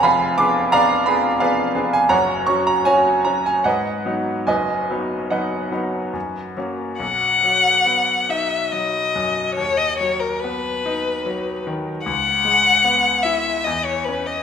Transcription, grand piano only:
X:1
M:3/4
L:1/16
Q:1/4=73
K:B
V:1 name="Grand piano"
[=f_a_c']2 =d'2 [=df^a]2 c'2 [_cdf]3 _a | [cfa]2 c' a [cg]2 a g [Bdf]4 | [Bdg]4 [Bdf]6 z2 | z12 |
z12 | z12 |]
V:2 name="Grand piano"
[=F,,,=F,,]2 [_C=D_A]2 [CDA]2 [CDA]2 [CDA]2 [CDA]2 | [F,,,F,,]2 [F,CF]2 [F,CF]2 [F,CF]2 G,,2 [F,B,D]2 | [F,,,F,,]2 [F,B,D]2 [F,B,D]2 [F,B,D]2 F,,2 [F,A,C]2 | B,,,2 F,2 B,2 D2 F,2 F,,2 |
D,,2 F,2 B,2 D2 F,2 D,2 | C,,2 G,2 B,2 E2 E,,2 C2 |]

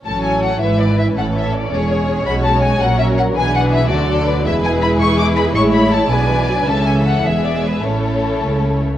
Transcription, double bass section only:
X:1
M:6/8
L:1/8
Q:3/8=108
K:A
V:1 name="Double bass section" clef=bass
A,,,3 G,,,3 | A,,,3 E,,,3 | B,,,3 ^A,,,3 | B,,,3 D,,3 |
E,,,3 E,,3 | A,,,3 B,,,3 | C,,3 E,,,3 | A,,,3 C,,3 |]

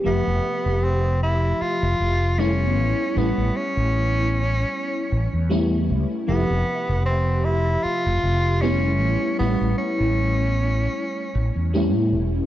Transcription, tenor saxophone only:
X:1
M:4/4
L:1/8
Q:"Swing 16ths" 1/4=77
K:Flyd
V:1 name="Tenor saxophone"
B,2 C E F2 _D2 | B, ^C6 z | B,2 C E F2 _D2 | B, ^C6 z |]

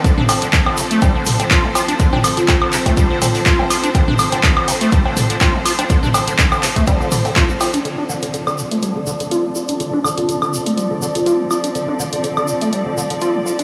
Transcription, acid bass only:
X:1
M:4/4
L:1/16
Q:"Swing 16ths" 1/4=123
K:Dm
V:1 name="Acid bass" clef=bass
D, D D, D, D, D, C, A, G, D, D, D, F D, F D | D, D D, D, D, D, C, A, G, D, D, D, F D, F D | D, D D, D, D, D, C, A, G, D, D, D, F D, F D | D, D D, D, D, D, C, A, G, D, D, D, F D, F D |
D, D D, D, D, D, C, A, G, D, D, D, F D, F D | D, D D, D, D, D, C, A, G, D, D, D, F D, F D | D, D D, D, D, D, C, A, G, D, D, D, F D, F D |]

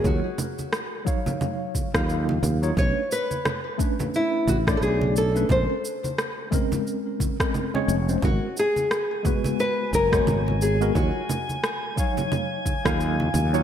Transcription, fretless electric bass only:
X:1
M:4/4
L:1/16
Q:"Swing 16ths" 1/4=88
K:D#m
V:1 name="Fretless electric bass" clef=bass
D,, z8 z2 D,,3 D,,2 | B,,, z8 z =A,,,2 B,,,4 | A,,, z12 z E,,,2 | G,,, z8 z F,,,2 G,,,4 |
D,, z8 z2 D,,3 D,,2 |]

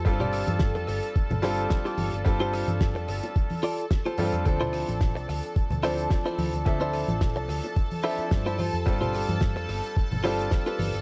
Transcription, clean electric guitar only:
X:1
M:4/4
L:1/16
Q:"Swing 16ths" 1/4=109
K:Gdor
V:1 name="Clean electric guitar"
z [FGAd]2 z6 z [FGAc]2 z [FGAd]2 z | z [FGAc]2 z6 z [FGAd]2 z [FGAc]2 z | z [EFcd]2 z6 z [EFcd]2 z [EFcd]2 z | z [EFcd]2 z6 z [EFce]2 z [EFce] [FGAc]2 |
z [FGAc]2 z6 z [FGAc]2 z [FGA=B]2 z |]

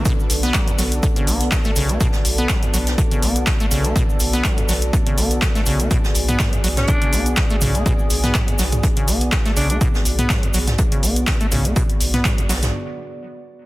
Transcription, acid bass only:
X:1
M:4/4
L:1/16
Q:"Swing 16ths" 1/4=123
K:Bdor
V:1 name="Acid bass" clef=bass
B,, z2 B, F, B,,, F, z D, C, B,2 B,, A, C, B, | B,, z2 B, F, B,,, F, z D, C, B,2 B,, A, C, B, | B,, z2 B, F, B,,, F, z D, C, B,2 B,, A, C, B, | B,, z2 B, F, B,,, F, z D, C, B,2 B,, A, C, B, |
B,, z2 B, F, B,,, F, z D, C, B,2 B,, A, C, B, | B,, z2 B, F, B,,, F, z D, C, B,2 B,, A, C, B, | B,, z2 B, F, B,,, F, z8 z |]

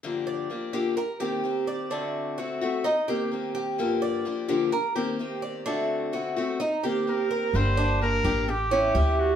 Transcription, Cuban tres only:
X:1
M:4/4
L:1/8
Q:1/4=128
K:Gm
V:1 name="Cuban tres"
z d2 G B G2 d | D2 ^F2 E G2 G- | G d2 G B G2 d | D2 ^F2 E G2 B |
z D2 G2 ^C G2 |]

